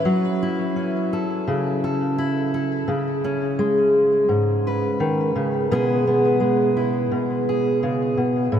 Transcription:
Already playing: C#4
0.05 F#3
0.43 E4
0.76 C#4
1.13 A4
1.48 C#3
1.84 A4
2.18 E4
2.54 A4
2.88 C#3
3.24 C#4
3.59 G#3
4.29 G#2
4.67 B4
5.00 D#3
5.36 C#3
5.71 B2 G#3 B3 E4 G#4
6.07 B3
6.40 G#3
6.77 E4
7.12 B2
7.49 G#4
7.83 C#3
8.17 B2
8.52 A2

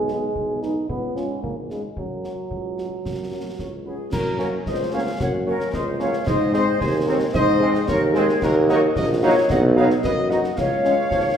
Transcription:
Already playing: B1 G#3
0.08 B3 D#4 G#4 B4, snare
0.35 B1, concert bass drum
0.62 B3 D#4 G#4 B4, snare
0.89 C#2 B3, concert bass drum
1.16 G#3 C#4 F4 B4, snare
1.43 G#1 A#3, concert bass drum
1.70 G#3 C#4 F4 B4, snare
1.97 F#2 F#3, concert bass drum
2.24 F#3 C#4 F#4 A#4, snare
2.51 C#2, concert bass drum
2.78 F#3 C#4 F#4 A#4, snare
3.05 F#2, concert bass drum, snare
3.31 F#3 C#4 F#4 A#4
3.59 C#2 A#4 C#5, concert bass drum, snare
3.85 F#3 C#4 F#4 G#4 B4
4.12 F#2 F#4 A#4, concert bass drum, snare, crash
4.38 F#3 A#3 C#4 A#4 C#5, snare
4.66 C#2 C5 D#5, concert bass drum, snare
4.93 F#3 A#3 C#4 C#5 F5
5.20 F#2 C#5 F#5, concert bass drum, snare
5.46 F#3 A#3 C#4 A#4 C#5
5.60 snare
5.74 C#2 C5 D#5, concert bass drum, snare
5.99 F#3 A#3 C#4 C#5 F5, snare
6.13 snare
6.26 G#2 C5 D#5, concert bass drum, snare, crash
6.53 G#3 C4 G#4 C5 D#5, snare
6.80 D#2 G#4 C5, concert bass drum, snare
7.06 G#3 C4 G#4 A#4 C#5
7.33 G#2 C5 D#5, concert bass drum, snare
7.60 G#3 C4 G#4
7.75 snare
7.88 D#2 A#4 C#5, concert bass drum, snare
8.14 G#3 C4 G#4 C5, snare
8.29 snare
8.42 D#2 F#4 A#4, concert bass drum, snare, crash
8.69 F#3 A#3 D#4 F#4 A#4 C#5, snare
8.95 A#1 A#4 D#5, concert bass drum, snare
9.23 F#3 A#3 D#4 F#4 C#5 F5
9.50 B1 D#5 F#5, concert bass drum, snare
9.76 F#3 B3 D#4 F#4 C#5 F5
9.90 snare
10.03 F#2 B4 D#5, concert bass drum, snare
10.30 F#3 B3 D#4 F#4 D#5 F#5, snare
10.44 snare
10.55 C#2 C#5 F5, concert bass drum, snare, crash
10.85 G#3 C#4, snare
11.11 G#1 F3, concert bass drum, snare

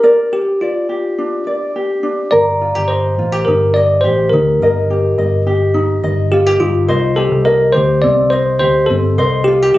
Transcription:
Already playing: D4 G4 A#4
0.03 A#4 D5
0.32 G4
0.61 F4 D5
0.89 G4
1.18 D4
1.47 D5
1.76 G4
2.03 D4
2.31 G1 A#4 D5
2.61 F4
2.75 G1 G4
2.88 C5 D#5
3.18 A1 F4
3.32 G4
3.45 G1 D#4 A#4
3.74 D5 D#5
4.01 A1 G4 C5
4.30 D2 D#4 A#4
4.60 G1 A#4 D#5
4.90 G4
5.17 G1 D#5
5.47 G4
5.74 D#4
6.04 G1 D#5
6.32 F4 G4
6.46 G4
6.60 G1 D#4 F4
6.88 C2 C5 D#5
7.16 G4 A4
7.32 C2
7.45 A#4 D#5
7.72 D2 G4 C5
8.02 C2 C4 D5
8.30 C5 D#5
8.59 D2 G4 C5
8.86 G1 C4 A4
9.18 C2 C5 D#5
9.44 F4 G4
9.62 G4
9.74 C2 G4

